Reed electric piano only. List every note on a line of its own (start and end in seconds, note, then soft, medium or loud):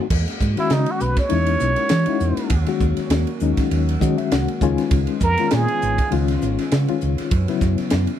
0.56 1.18 D#3 medium
0.56 1.18 G#3 medium
0.56 1.19 C#4 medium
0.56 1.19 F#4 medium
1.29 1.92 G#3 medium
1.29 1.92 C#4 medium
1.29 1.91 D#4 medium
1.29 1.92 E4 medium
2.07 2.52 G#3 medium
2.07 2.52 C#4 medium
2.07 2.51 D#4 medium
2.07 2.52 E4 medium
2.67 3.28 D#3 medium
2.67 3.29 G#3 medium
2.67 3.29 C#4 medium
2.67 3.29 F#4 medium
3.41 3.92 D#3 medium
3.41 3.92 G#3 medium
3.41 3.92 C#4 medium
3.41 3.92 D#4 medium
4.00 4.61 D#3 medium
4.00 4.61 G#3 medium
4.00 4.61 C#4 medium
4.00 4.62 F#4 medium
4.00 4.17 D#5 medium
4.18 4.31 E5 medium
4.32 4.60 F#5 medium
4.62 5.23 D#3 loud
4.62 5.23 G#3 medium
4.62 5.23 C#4 medium
4.62 5.24 F4 loud
4.62 4.91 G#5 medium
5.38 5.99 D#3 medium
5.38 6.00 G#3 medium
5.38 6.00 C#4 medium
5.38 6.00 F4 medium
6.11 6.72 D#3 medium
6.11 6.73 G#3 medium
6.11 6.73 C#4 medium
6.11 6.74 F4 loud
6.88 7.32 D#3 medium
6.88 7.32 G#3 medium
6.88 7.33 C#4 medium
6.88 7.33 F4 loud
7.48 8.10 C#3 medium
7.48 8.10 F#3 medium
7.48 8.10 B3 medium
7.48 8.10 E4 medium